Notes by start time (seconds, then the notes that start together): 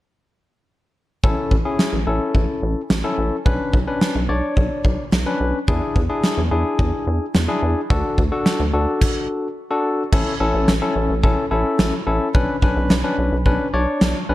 1.24 A1 C#4 E4 A4, kick
1.51 A1, kick
1.65 C#4 E4 G#4
1.79 snare
1.93 A1
2.07 A1 C#4 E4 A4
2.35 A1, kick
2.63 A1
2.90 A1, snare
3.04 C#4 E4 A4
3.18 A1
3.46 B1 C#4 D4 B4, kick
3.73 B1, kick
3.87 C#4 D4 B4
4.01 snare
4.15 B1
4.29 B1 D4 C#5 D5
4.57 B1, kick
4.85 B1, kick
5.12 B1, snare
5.26 C#4 D4 B4
5.40 B1
5.68 E2 D4 E4 G#4, kick
5.96 E2, kick
6.10 D4 E4 G#4
6.24 snare
6.38 E2
6.51 E2 D4 E4 G#4
6.79 E2, kick
7.07 E2
7.35 E2, snare
7.48 D4 E4 G#4
7.63 E2
7.90 D2 D4 F#4 A4, kick
8.18 D2, kick
8.32 D4 F#4 A4
8.46 snare
8.60 D2
8.73 D2 D4 F#4 A4
9.01 kick, crash
9.71 D4 F#4 A4
10.12 A1 C#4 E4 A4, kick, crash
10.40 A1 C#4 E4 A4
10.54 A1
10.68 A1, snare
10.82 C#4 E4 A4
10.96 A1
11.10 A1
11.23 A1 C#4 E4 A4, kick
11.51 A1 C#4 E4 A4
11.79 A1, snare
12.07 A1 C#4 E4 A4
12.35 B1 C#4 D4 B4, kick
12.62 B1 C#4 D4 B4, kick
12.77 B1
12.90 B1, snare
13.04 C#4 D4 B4
13.18 B1
13.32 B1
13.46 B1 C#4 D4 B4, kick
13.74 B1 D4 C#5 D5
14.01 B1, snare
14.29 B1 C#4 D4 B4